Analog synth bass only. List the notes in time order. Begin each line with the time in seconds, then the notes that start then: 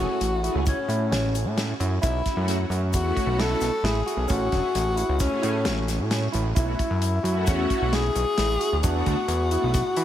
0.21 A1
0.55 C#2
0.88 A2
1.11 A1
1.45 A2
1.80 F#2
2.03 B1
2.37 F#2
2.70 F#2
2.94 E2
3.26 B1
3.61 B1
3.83 A1
4.17 B1
4.30 A1
4.52 E1
4.75 A1
5.09 C#2
5.43 A2
5.66 A1
5.99 A2
6.34 A1
6.56 B1
6.90 F#2
7.24 F#2
7.47 E2
7.82 B1
8.16 B1
8.38 A1
8.73 D2
8.83 E2
9.06 D2
9.28 E2
9.64 B1
9.97 E3